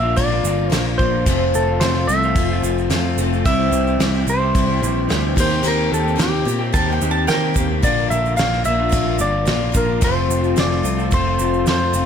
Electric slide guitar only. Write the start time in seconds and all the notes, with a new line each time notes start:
Already playing: E5
0.17 D5
0.74 C5
0.98 C5
1.55 A4
1.80 C5
2.08 E5
3.46 E5
4.30 C5
5.40 C5
5.68 A#4
5.94 A4
6.22 G4
7.84 D5
8.10 E5
8.37 F5
8.65 E5
9.21 D5
9.77 A#4
10.04 C5
10.60 D5
11.14 C5
11.69 C5